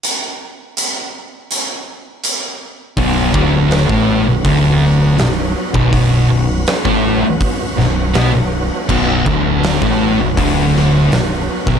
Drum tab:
CC |----------------|----------------|----------------|x---------------|
HH |x---x---x---x---|o---o---o---o---|o---o---o---o---|----o---o---o---|
SD |----------------|----o-------o---|----o-----o-o---|----o-----o-o--o|
BD |----------------|o-o--o--o------o|o----o--o-------|o-o--o--o------o|